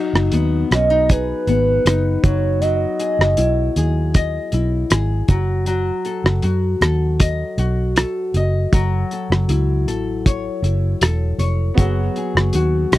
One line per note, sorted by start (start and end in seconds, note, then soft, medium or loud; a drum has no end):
0.00 2.22 F#3 medium
0.00 0.71 D#4 medium
0.13 0.29 F#1 medium
0.13 cross-stick medium
0.32 0.63 D#2 medium
0.32 1.48 B3 medium
0.32 closed hi-hat medium
0.71 1.32 B1 medium
0.71 0.90 C#4 medium
0.71 1.12 D#5 loud
0.71 cross-stick medium
0.71 closed hi-hat soft
0.90 1.85 D#4 soft
1.09 2.65 G#4 medium
1.09 2.24 B4 loud
1.09 kick medium
1.09 closed hi-hat medium
1.47 1.78 G#1 medium
1.47 4.98 B3 medium
1.47 closed hi-hat soft
1.85 2.16 F#1 medium
1.85 3.37 D#4 medium
1.85 cross-stick medium
1.85 closed hi-hat medium
2.23 2.85 F#1 medium
2.23 2.61 F#3 medium
2.23 2.62 C#5 loud
2.23 kick loud
2.23 closed hi-hat soft
2.61 5.29 F#3 medium
2.61 4.14 D#5 loud
2.61 closed hi-hat soft
2.99 3.76 G#4 soft
2.99 closed hi-hat soft
3.19 3.34 F#1 medium
3.19 cross-stick medium
3.37 3.68 B1 medium
3.37 4.52 E4 medium
3.37 closed hi-hat medium
3.76 4.37 D#2 medium
3.76 4.90 G#4 medium
3.76 closed hi-hat soft
4.14 6.08 D#5 medium
4.14 kick medium
4.14 closed hi-hat medium
4.52 4.83 B1 medium
4.52 5.37 E4 medium
4.52 closed hi-hat medium
4.90 5.21 G#1 medium
4.90 5.37 G#4 medium
4.90 cross-stick medium
4.90 closed hi-hat medium
5.28 5.90 F#1 medium
5.28 5.67 F#3 medium
5.28 kick loud
5.28 closed hi-hat medium
5.66 8.73 F#3 medium
5.66 closed hi-hat medium
6.05 6.81 A4 soft
6.05 closed hi-hat soft
6.24 6.39 F#1 medium
6.24 cross-stick medium
6.42 6.74 F#2 medium
6.42 7.58 F#4 medium
6.42 closed hi-hat medium
6.81 7.42 D#2 medium
6.81 7.97 A4 medium
6.81 cross-stick medium
6.81 closed hi-hat soft
7.19 8.34 D#5 medium
7.19 kick medium
7.19 closed hi-hat medium
7.58 8.04 B1 medium
7.58 9.49 F#4 medium
7.58 closed hi-hat soft
7.96 9.12 A4 medium
7.96 cross-stick medium
7.96 closed hi-hat medium
8.34 8.65 F#1 medium
8.34 8.81 D#5 medium
8.34 closed hi-hat soft
8.72 9.03 F#1 loud
8.72 11.77 F#3 medium
8.72 kick loud
8.72 closed hi-hat medium
9.11 9.87 A4 soft
9.11 closed hi-hat soft
9.30 9.45 F#1 medium
9.30 cross-stick medium
9.48 9.87 C#2 medium
9.48 10.62 E4 medium
9.48 closed hi-hat medium
9.87 10.48 A1 medium
9.87 11.01 A4 medium
9.87 closed hi-hat soft
10.26 11.38 C#5 medium
10.26 kick medium
10.26 closed hi-hat medium
10.62 10.93 F#1 medium
10.62 11.85 E4 medium
10.62 closed hi-hat soft
11.01 11.32 E1 medium
11.01 11.85 A4 medium
11.01 cross-stick medium
11.01 closed hi-hat medium
11.38 11.69 F1 medium
11.38 11.85 C#5 medium
11.38 closed hi-hat soft
11.74 12.08 F#1 medium
11.74 12.98 F#3 medium
11.74 12.98 B3 medium
11.74 12.98 F#4 medium
11.74 12.98 G#4 medium
11.74 kick loud
11.78 12.98 F#5 medium
11.78 closed hi-hat medium
12.16 12.93 G#4 medium
12.16 closed hi-hat soft
12.35 12.50 F#1 medium
12.35 cross-stick medium
12.53 12.84 D#2 medium
12.53 12.92 F#4 medium
12.53 closed hi-hat medium
12.92 12.98 B1 medium
12.92 12.98 F#4 medium
12.92 12.98 D#5 medium
12.92 cross-stick medium
12.92 closed hi-hat soft